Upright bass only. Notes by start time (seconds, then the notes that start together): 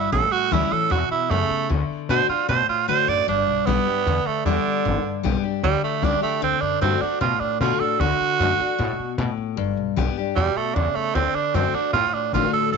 0.12 A1
0.32 muted upright bass stroke
0.52 D2
0.71 muted upright bass stroke
0.91 E2
1.11 muted upright bass stroke
1.30 F#2
1.50 muted upright bass stroke
1.70 D2
1.90 muted upright bass stroke
2.09 B2
2.29 muted upright bass stroke
2.49 B2
2.69 muted upright bass stroke
2.89 A2
3.08 F#2
3.28 G1
3.47 B1
3.67 B1
4.06 E2
4.26 muted upright bass stroke
4.45 E2
4.66 muted upright bass stroke
4.86 G1
5.05 muted upright bass stroke
5.25 B1
5.44 muted upright bass stroke
5.63 D2
5.83 muted upright bass stroke
6.02 C#2
6.42 D2
6.62 F#2
6.82 G2
7.01 muted upright bass stroke
7.21 B2
7.40 muted upright bass stroke
7.60 B2
7.80 muted upright bass stroke
8.00 D2
8.20 muted upright bass stroke
8.40 F#2
8.60 muted upright bass stroke
8.79 A2
8.99 muted upright bass stroke
9.18 B2
9.37 muted upright bass stroke
9.57 G1
9.77 B1
9.97 B1
10.16 muted upright bass stroke
10.36 E2
10.56 muted upright bass stroke
10.76 E2
10.95 muted upright bass stroke
11.15 D2
11.34 muted upright bass stroke
11.54 F#2
11.74 muted upright bass stroke
11.93 A2
12.13 muted upright bass stroke
12.33 G#1
12.53 muted upright bass stroke
12.72 A1